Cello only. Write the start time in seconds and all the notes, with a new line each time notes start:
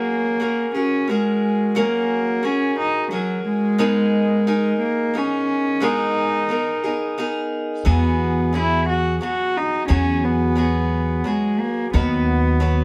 Already playing: A#3
0.76 C#4
1.10 G#3
1.79 A#3
2.45 C#4
2.79 D#4
3.12 F#3
3.45 G#3
4.81 A#3
5.17 C#4
5.84 D#4
7.89 B3
8.58 E4
8.89 F#4
9.23 F#4
9.57 D#4
9.89 C#4
10.24 B3
11.26 G#3
11.59 A#3
11.94 B3